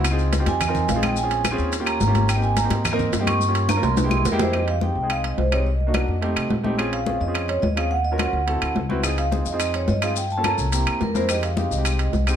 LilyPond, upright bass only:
\new Staff \with { instrumentName = "Upright bass" } { \clef bass \time 4/4 \key f \minor \tempo 4 = 213 des,4. f,4. bes,,4~ | bes,,4. ees,4. aes,,4~ | aes,,4. aes,4. g,4~ | g,4. c,4. f,4~ |
f,4. c,4. c,4~ | c,4. f,4 c,8 bes,,4~ | bes,,4. f,4. ees,4~ | ees,4. d,4 d,8 des,4~ |
des,4. f,4. g,4~ | g,4. c,4 e,8 f,4~ | f,4. c,4. c,4 | }